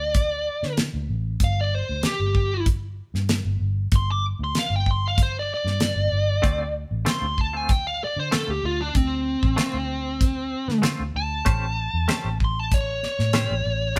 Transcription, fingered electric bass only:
Already playing: D2
0.63 D3
0.94 D2
1.09 A1
1.41 G1
1.89 D2
2.20 G1
3.14 G2
3.45 G1
3.60 G1
3.92 G1
4.39 D2
4.70 G1
5.65 G2
5.96 G1
6.12 G1
6.44 D2
6.91 A1
7.22 D2
8.16 D3
8.48 D2
8.63 D2
8.95 D2
9.43 A1
9.74 D2
10.68 D3
11.00 D2
11.15 D2
11.47 A1
11.93 E2
12.24 A1
13.19 A2
13.50 A1
13.65 A1

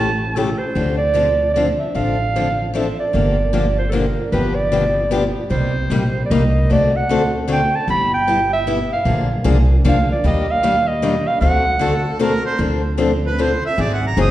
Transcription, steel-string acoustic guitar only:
0.36 C#3 E3 A3 C#4 G4
0.75 D3 F3 C4 D4 A4
1.14 D3 F3 C4 D4 A4
1.56 D3 F3 C4 D4 A4
1.95 D3 F3 C4 D4 A4
2.36 D3 F3 C4 D4 A4
2.74 D3 F3 C4 D4 A4
3.13 D3 F3 A#3 D4 G4
3.53 D3 F3 A#3 D4 G4
3.92 D3 F3 A#3 D4 G4
4.32 D3 F3 B3 D4 G4
4.72 D3 F3 B3 D4 G4
5.11 D3 F3 B3 D4 G4
5.50 C3 G3 A#3 D#4 G4
5.90 C3 G3 A#3 D#4 G4
6.31 C3 G3 A#3 D#4 G4
6.70 D3 A3 C4 F#4 A4
7.09 D3 A3 C4 F#4 A4
7.48 D3 A3 C4 F#4 A4
7.88 G3 B3 E4 G4
8.27 G3 B3 E4 G4
8.67 G3 B3 E4 G4
9.05 D3 F3 A#3 D4 G#4
9.44 D3 F3 A#3 D4 G#4
9.84 D3 F3 A#3 D4 G#4
10.24 D#3 G3 A#3 D4 G4
10.63 D#3 G3 A#3 D4 G4
11.02 D#3 G3 A#3 D4 G4
11.41 D3 A3 C4 F#4 A4
11.79 D3 A3 C4 F#4 A4
12.19 D3 A3 C4 F#4 A4
12.58 D3 F3 C4 D4 A4
12.98 D3 F3 C4 D4 A4
13.39 D3 F3 C4 D4 A4
13.78 D#3 F#3 C4 D#4 G#4
14.17 D#3 F#3 C4 D#4 G#4

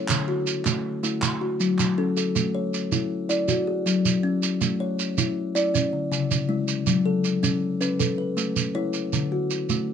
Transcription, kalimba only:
Already playing: C#5
0.09 D3
0.28 F#4
0.66 A3
1.03 A3 E4
1.41 F#4
1.60 F#3
1.98 C#4 A4
2.17 A4
2.35 A3
2.55 C#5
2.92 E4
3.29 E4 D5
3.48 F#4
3.67 G#4
3.86 F#3
4.23 C#4
4.61 A3
4.80 C#5
5.18 E4
5.55 E4 D5
5.74 C#4
5.93 D3
6.12 C#3
6.49 G#3 E4
6.87 F#3
7.06 A4
7.43 C#4
7.81 C#4 B4
7.99 A4
8.18 B4
8.37 A3
8.75 E4 C#5
9.13 D3
9.32 F#4
9.70 A3

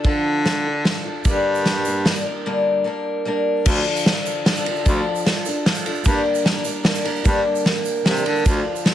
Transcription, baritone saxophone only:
0.05 D3
1.25 G2
3.66 D2
4.86 D2
6.06 G2
7.25 G2
8.05 C3
8.25 D3
8.46 D2

